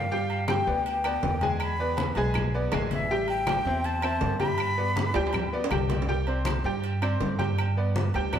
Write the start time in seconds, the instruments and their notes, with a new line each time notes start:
Already playing: upright bass G2, flute F5
0.11 grand piano G3 G4 G5, high conga
0.30 high conga, low agogo
0.48 grand piano G3 G4 G5, flute G5, high conga, low timbale, low agogo, claves
0.67 upright bass D2, grand piano B3 B4 D5, high conga
0.86 flute G5, high conga, low agogo
1.04 grand piano B3 B4 D5, high conga, low agogo, claves
1.23 upright bass E2, high conga, low timbale
1.41 grand piano G#3 G#4 G#5, high conga, low agogo
1.60 flute B5, high conga, low agogo, claves
1.79 grand piano B3 B4 D5, high conga
1.97 high conga, low timbale, low agogo
2.15 upright bass B1, grand piano G#3 G#4 G#5, high conga, low agogo
2.34 high conga, low conga, low agogo, claves
2.54 grand piano B3 B4 D5, high conga
2.72 upright bass A1, grand piano G#3 G#4 G#5, high conga, low timbale, low agogo, claves
2.91 flute E5, high conga, low agogo
3.10 grand piano G3 G4 G5, high conga
3.28 flute G5, high conga, low agogo
3.47 grand piano G3 G4 G5, high conga, low timbale, low agogo, claves
3.65 upright bass E2, grand piano C4 C5 E5, high conga
3.84 flute A5, high conga, low agogo
4.02 grand piano C4 C5 E5, high conga, low agogo, claves
4.21 upright bass G2, high conga, low timbale
4.40 grand piano G3 G4 G5, flute B5, high conga, low agogo
4.58 high conga, low agogo, claves
4.78 grand piano B3 B4 D5, high conga
4.96 high conga, low timbale, low agogo
5.14 upright bass D2, grand piano G3 G4 G5, high conga, high timbale, low agogo
5.27 high timbale
5.33 high conga, low conga, low agogo, claves
5.52 grand piano B3 B4 D5, high conga
5.64 low timbale
5.71 upright bass C2, grand piano G3 G4 G5, high conga, low agogo, claves
5.90 high conga, low timbale, low agogo
6.02 low timbale
6.08 grand piano G3 G4 G5, high conga
6.27 grand piano C4 C5 D5, high conga, low agogo
6.45 high conga, low timbale, low agogo, claves
6.64 upright bass G2, grand piano G3 G4 G5, high conga
6.83 high conga, low agogo
7.02 grand piano C4 C5 D5, high conga, low agogo, claves
7.20 upright bass G2, high conga, low timbale
7.38 grand piano G3 G4 G5, high conga, low agogo
7.58 high conga, low agogo, claves
7.77 grand piano B3 B4 D5, high conga
7.96 high conga, low timbale, low agogo
8.14 upright bass D2, grand piano G3 G4 G5, high conga, low agogo
8.33 grand piano B3 B4 D5, high conga, low conga, low agogo, claves